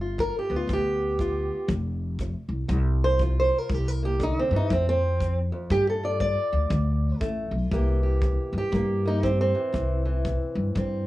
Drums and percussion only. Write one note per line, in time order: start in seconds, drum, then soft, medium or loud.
0.19 kick medium
0.69 kick medium
1.19 kick medium
1.69 kick medium
2.19 kick medium
2.69 kick medium
3.19 kick medium
3.70 kick medium
4.20 kick medium
4.70 kick medium
5.20 kick medium
5.70 kick medium
6.20 kick medium
6.71 kick medium
7.21 kick medium
7.72 kick medium
8.22 kick medium
8.73 kick medium
9.23 kick medium
9.74 kick medium
10.25 kick medium
10.76 kick medium